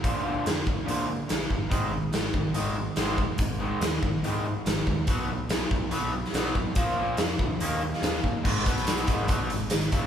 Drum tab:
CC |----------------|----------------|----------------|----------------|
HH |x---x---x---x---|x---x---x---x---|x---x---x---x---|x---x---x---x---|
SD |----o-------o---|----o-------o---|----o-------o---|----o------oo---|
BD |o-----o-------o-|o-----o-------o-|o-----o-------o-|o-----o-------o-|

CC |----------------|x---------------|
HH |x---x---x---x---|--xxxxx-x-x-xxx-|
SD |----o------oo---|----o-------o---|
BD |o-----o-------o-|o-o---o-o-----o-|